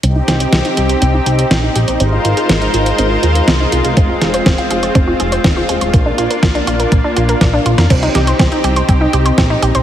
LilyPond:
<<
  \new Staff \with { instrumentName = "Synth arpeggio sound" } { \time 4/4 \key c \minor \tempo 4 = 122 c'16 ees'16 g'16 c''16 c'16 ees'16 g'16 c''16 c'16 ees'16 g'16 c''16 c'16 ees'16 g'16 c''16 | c'16 ees'16 f'16 aes'16 c'16 ees'16 f'16 aes'16 c'16 ees'16 f'16 aes'16 c'16 ees'16 f'16 aes'16 | c'16 f'16 aes'16 c''16 c'16 f'16 aes'16 c''16 c'16 f'16 aes'16 c''16 c'16 f'16 aes'16 c''16 | bes16 d'16 f'16 bes'16 bes16 d'16 f'16 bes'16 bes16 d'16 f'16 bes'16 bes16 d'16 f'16 bes'16 |
c'16 ees'16 g'16 c''16 c'16 ees'16 g'16 c''16 c'16 ees'16 g'16 c''16 c'16 ees'16 g'16 c''16 | }
  \new Staff \with { instrumentName = "Analog synth pad" } { \time 4/4 \key c \minor << { <ees' g'>1 | <bes' c''>1 | c'1 | d'1 |
<ees' g'>1 | } \\ { c'1 | <aes f'>1~ | <aes f'>1 | bes1 |
c'1 | } >> }
  \new Staff \with { instrumentName = "Analog synth bass" } { \clef bass \time 4/4 \key c \minor c,16 r16 c,16 r16 c,16 r16 c,16 r16 c,16 r16 c,16 r16 bes,,16 r16 bes,,16 bes,,16 | aes,,16 r16 aes,,16 r16 aes,,16 r16 aes,,16 r16 aes,,16 r16 ees,16 r16 c,16 r16 c,16 c,16 | f,,16 r16 f,,16 r16 f,,16 r16 f,,16 r16 f,,16 r16 f,,16 r16 ees,,16 r16 ees,,16 ees,,16 | bes,,16 r16 bes,,16 r16 bes,,16 r16 bes,,16 r16 bes,,16 r16 bes,,16 r16 bes,,16 r16 bes,,16 f,16 |
c,16 r16 c,16 r16 c,16 r16 c,16 r16 c,16 r16 c,16 r16 bes,,16 r16 bes,,16 bes,,16 | }
  \new DrumStaff \with { instrumentName = "Drums" } \drummode { \time 4/4 hh8 <hh sn>16 hh16 <hh sn>16 hh16 hh16 hh16 hh8 hh16 hh16 <hh sn>8 hh16 hh16 | hh8 hh16 hh16 <hh sn>16 hh16 hh16 hh16 hh8 hh16 hh16 <hh sn>8 hh16 hh16 | <hh bd>8 <hh sn>16 hh16 <hh bd sn>16 hh16 hh16 hh16 <hh bd>8 hh16 hh16 <hh bd sn>8 hh16 hh16 | <hh bd>8 hh16 hh16 <hh bd sn>16 hh16 hh16 hh16 <hh bd>8 hh16 hh16 <hh bd sn>8 hh16 <hh sn>16 |
<cymc hh bd>16 hh16 <hh sn>16 hh16 <hh bd sn>16 hh16 hh16 hh16 <hh bd>8 hh16 hh16 <hh bd sn>8 hh16 hh16 | }
>>